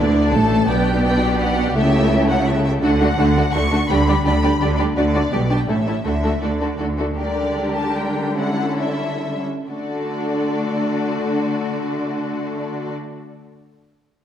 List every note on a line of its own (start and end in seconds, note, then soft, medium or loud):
0.00 0.34 D2 medium
0.00 0.33 D3 medium
0.00 0.33 D4 medium
0.00 0.33 D5 medium
0.32 0.70 A1 medium
0.32 0.69 A2 medium
0.32 0.70 A3 medium
0.32 0.69 A4 medium
0.32 0.69 A5 medium
0.68 1.73 B1 medium
0.68 1.72 B2 medium
0.68 1.72 B3 medium
0.68 1.72 D4 medium
0.68 2.79 G4 medium
0.68 1.72 D5 medium
0.68 1.03 G5 medium
1.04 1.40 G5 medium
1.40 1.75 F#5 medium
1.75 2.83 C#2 medium
1.75 2.83 C#3 medium
1.75 2.78 A3 medium
1.75 2.78 E4 medium
1.75 2.78 A4 medium
1.75 2.29 E5 medium
2.28 2.46 F#5 medium
2.46 2.64 E5 medium
2.65 2.72 E5 medium
2.82 3.14 D2 medium
2.82 3.13 D3 medium
2.82 2.90 A3 medium
2.82 2.90 D4 medium
2.82 2.90 F#4 medium
2.82 2.90 A4 medium
2.82 3.52 F#5 medium
3.01 3.08 A3 medium
3.01 3.08 D4 medium
3.01 3.08 F#4 medium
3.01 3.09 A4 medium
3.18 3.49 D2 medium
3.18 3.49 D3 medium
3.18 3.25 A3 medium
3.18 3.25 D4 medium
3.18 3.26 F#4 medium
3.18 3.26 A4 medium
3.37 3.44 A3 medium
3.37 3.44 D4 soft
3.37 3.44 F#4 soft
3.37 3.44 A4 soft
3.53 3.85 D2 medium
3.53 3.85 D3 medium
3.53 3.62 A3 medium
3.53 3.62 D4 medium
3.53 3.62 F#4 medium
3.53 3.62 A4 medium
3.53 3.89 C#6 medium
3.71 3.79 A3 soft
3.71 3.79 D4 soft
3.71 3.79 F#4 soft
3.71 3.78 A4 soft
3.89 4.21 D2 medium
3.89 4.20 D3 medium
3.89 3.97 G3 medium
3.89 3.97 D4 medium
3.89 3.97 G4 medium
3.89 3.97 D5 soft
3.89 4.24 B5 medium
4.08 4.15 G3 soft
4.08 4.15 D4 soft
4.08 4.14 G4 soft
4.08 4.15 D5 soft
4.24 4.56 D2 medium
4.24 4.56 D3 medium
4.24 4.33 G3 soft
4.24 4.33 D4 soft
4.24 4.32 G4 soft
4.24 4.32 D5 soft
4.24 4.77 B5 medium
4.43 4.51 G3 soft
4.43 4.51 D4 soft
4.43 4.50 G4 soft
4.43 4.50 D5 soft
4.60 4.92 D2 medium
4.60 4.92 D3 medium
4.60 4.68 G3 soft
4.60 4.68 D4 soft
4.60 4.68 G4 soft
4.60 4.68 D5 soft
4.78 4.87 G3 soft
4.78 4.86 D4 soft
4.78 4.85 G4 soft
4.78 4.85 D5 soft
4.96 5.28 D2 medium
4.96 5.28 D3 medium
4.96 5.04 A3 soft
4.96 5.05 D4 soft
4.96 5.03 F#4 soft
4.96 5.46 D5 medium
4.96 5.04 D5 soft
5.14 5.22 A3 soft
5.14 5.22 D4 soft
5.14 5.21 F#4 soft
5.14 5.21 D5 soft
5.32 5.64 B1 soft
5.32 5.64 B2 soft
5.32 5.40 G3 soft
5.32 5.40 D4 soft
5.32 5.39 G4 soft
5.32 5.39 D5 soft
5.49 5.58 G3 soft
5.49 5.58 D4 soft
5.49 5.57 G4 soft
5.49 5.57 D5 soft
5.49 5.59 A5 medium
5.60 5.68 G5 soft
5.68 6.01 A1 soft
5.68 6.01 A2 soft
5.68 5.76 A3 soft
5.68 5.75 C#4 soft
5.68 5.76 E4 soft
5.68 5.76 A4 soft
5.68 6.04 E5 medium
5.86 5.95 A3 soft
5.86 5.94 C#4 soft
5.86 5.94 E4 soft
5.86 5.94 A4 soft
6.05 6.39 D2 soft
6.05 6.39 D3 soft
6.05 6.12 A3 soft
6.05 6.12 D4 soft
6.05 6.13 F#4 soft
6.05 6.13 A4 soft
6.05 6.42 E5 medium
6.24 6.31 A3 soft
6.24 6.31 D4 soft
6.24 6.32 F#4 soft
6.24 6.32 A4 soft
6.42 6.76 D2 soft
6.42 6.75 D3 soft
6.42 6.51 A3 soft
6.42 6.50 D4 soft
6.42 6.50 F#4 soft
6.42 6.50 A4 soft
6.42 6.80 D5 soft
6.61 6.69 A3 soft
6.61 6.69 D4 soft
6.61 6.69 F#4 soft
6.61 6.68 A4 soft
6.79 7.13 D2 soft
6.79 7.13 D3 soft
6.79 6.88 A3 soft
6.79 6.87 D4 soft
6.79 6.86 F#4 soft
6.79 6.86 A4 soft
6.98 7.07 A3 soft
6.98 7.07 D4 soft
6.98 7.06 F#4 soft
6.98 7.06 A4 soft
7.16 9.42 D3 soft
7.16 9.42 G3 soft
7.16 8.33 D4 soft
7.16 8.32 G4 soft
7.16 8.32 A#4 soft
7.16 7.72 D5 medium
7.74 7.95 A5 medium
7.96 8.36 G5 soft
8.35 9.42 C#4 soft
8.35 9.41 E4 soft
8.35 9.41 A4 soft
8.35 8.77 F#5 medium
8.78 9.44 E5 medium
9.68 12.94 D3 soft
9.68 12.93 A3 soft
9.68 12.94 D4 soft
9.68 12.93 F#4 soft
9.68 12.93 A4 soft
9.68 12.93 D5 soft